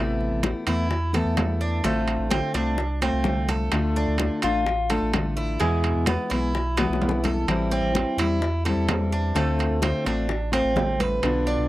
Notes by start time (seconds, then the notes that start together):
Already playing: A1 C3 E3 A3
0.00 B3 E4
0.21 high conga
0.31 A1
0.43 E3 A3 B3 E4, high bongo, high conga, high timbale
0.67 E2 E3 A3 B3 E4, high conga, high timbale
0.90 muted steel-string acoustic guitar stroke, high bongo, high conga
1.13 E3 A3 B3 E4 A4, high conga, high timbale
1.25 E2
1.37 E3 A3 B3 E4, high bongo, low bongo, high conga, high timbale, low timbale
1.61 D4, high conga
1.83 A1 D3 A3 C4 F4, high bongo, high conga, high timbale
2.08 high bongo, high conga, high timbale
2.19 A1
2.30 D3 A3 C4 F4, high bongo, high conga, high timbale
2.54 C2 A3 C4 D4 F4, high bongo, high timbale
2.78 muted steel-string acoustic guitar stroke, high bongo, high conga
3.01 A3 C4 F4, high bongo, high conga, high timbale
3.13 C2
3.24 D3 A3 C4 F4, high bongo, low bongo, high conga
3.48 A4, high conga, high timbale
3.72 D2 D3 A3 D4 F4, high bongo, high conga, high timbale
3.96 D4, high conga
4.08 D2
4.18 D3 A3 D4 F4, high bongo, high conga, high timbale
4.42 A1 A3 D4 F4, high conga, high timbale
4.66 muted steel-string acoustic guitar stroke, high bongo, high conga
4.90 A3 D4 F4 A4, high conga, high timbale
5.02 A1
5.13 D3 A3 D4 F4, high bongo, low bongo, high conga, high timbale
5.37 E4
5.60 E2 B2 E3 G#3 B3 E4, high bongo, high conga, high timbale
5.84 high bongo, high conga, high timbale
5.95 E2
6.06 E3 G#3 B3 E4, high bongo, high conga, high timbale
6.30 B1 E3 G#3 B3 E4, high bongo, high timbale
6.55 muted steel-string acoustic guitar stroke, high bongo, high conga
6.77 E3 G#3 B3 E4, high bongo, high conga, high timbale
6.89 B1, high bongo
7.01 E3 G#3 B3 E4, high conga, low timbale
7.09 low bongo
7.24 A4, low bongo, high conga, high timbale
7.48 A1 E3 G3 C4 E4, high bongo, high conga, high timbale
7.71 C4, high conga
7.82 A1
7.94 E3 G3 C4 E4, high bongo, high conga, high timbale
8.17 E2 G3 C4 E4, high conga, high timbale
8.42 muted steel-string acoustic guitar stroke, high bongo, high conga
8.65 G3 C4 E4 A4, high conga, high timbale
8.76 E2
8.89 E3 G3 C4 E4, high bongo, low bongo, high conga, high timbale, low timbale
9.12 D4, high conga
9.34 D2 D3 A3 C4 F4, high bongo, high conga, high timbale
9.59 high bongo, high conga, high timbale
9.70 D2
9.81 D3 A3 C4 F4, high bongo, high conga, high timbale
10.05 A1 A3 C4 D4 F4, high bongo, high timbale
10.29 muted steel-string acoustic guitar stroke, high bongo, high conga
10.52 A3 C4 F4, high bongo, high conga, high timbale
10.64 A1
10.76 D3 A3 C4 F4, high bongo, low bongo, high conga, low timbale
11.00 B4, high conga, high timbale
11.22 B1 B2 D3 B3 D4 F4, high bongo, high conga, high timbale
11.47 D4, high conga
11.58 B1